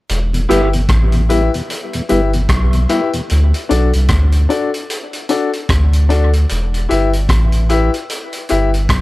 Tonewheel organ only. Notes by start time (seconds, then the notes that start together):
0.33 E2 B2
0.49 G3 B3 E4
0.74 E2 B2
1.14 E2 B2
1.30 G3 B3 E4
1.54 E2 B2
1.94 E2 B2
2.09 G3 B3 E4
2.34 E2 B2
2.74 E2 B2
2.89 G3 B3 E4
3.14 E2 B2